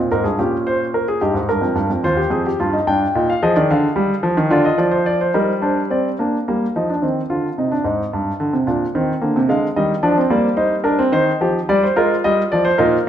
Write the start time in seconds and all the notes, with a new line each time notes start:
Already playing: A#2 C4
0.12 G#2 A#4
0.24 G2 G#4
0.39 A#2 C#4 G4
0.67 C5
0.94 A#4
1.08 G#4
1.21 G2 D#4 G4
1.34 G#2
1.49 G2 A#4
1.62 F2
1.75 G2
1.90 F2
2.04 D#2 F4 C5
2.17 G4
2.30 F2 G#4
2.46 G4
2.60 G2 F4
2.73 D#4
2.87 G2 D4 G5
3.15 A#2 D#4
3.30 F5
3.43 F3 G#4 D#5
3.56 D#3 D5
3.71 D3 F5
3.96 G3
4.23 F3
4.37 D#3
4.50 D3 F4 D5
4.65 D#5
4.78 F3 D5
4.91 C5
5.06 D5
5.21 C5
5.34 G3 D#4 A#4
5.62 D4 C5
5.91 C4 D5
6.19 A#3 D4
6.48 G3 A#3
6.76 F3 D#4
6.90 D4
7.02 D#3 C4
7.30 D3 F4
7.58 C3 D#4
7.72 D4
7.84 G#2 D#4
8.13 G2
8.40 D3
8.53 C3
8.67 A#2 D4
8.95 D#3 C4
9.22 D3 A#3
9.36 C3
9.49 D3 G#3 F5
9.76 D#3 G3 D#5
10.03 F3 D4 D5
10.18 C4
10.30 G3 A#3 D5
10.57 D#4 C5
10.84 D4 A#4
10.99 C4
11.12 D#3 D#4 C5
11.41 F3 G4
11.69 G3 D5
11.83 C5
11.96 G#3 F4 A#4
12.24 G3 D#5
12.52 F3 D5
12.65 C5
12.78 A#2 D#4 A#4